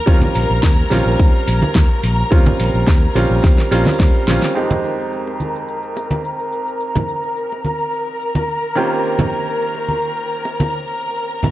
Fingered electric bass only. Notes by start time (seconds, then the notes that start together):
0.07 D#2
0.35 A#1
0.50 A#1
0.63 D#2
0.91 A#1
1.06 A#1
1.19 D#2
1.48 A#1
1.62 muted fingered electric bass stroke
1.76 D#2
2.04 A#1
2.32 D#2
2.59 A#1
2.74 A#1
2.88 D#2
3.15 A#1
3.30 A#1
3.44 D#2
3.72 A#1
3.86 muted fingered electric bass stroke
4.00 D#2
4.28 A#1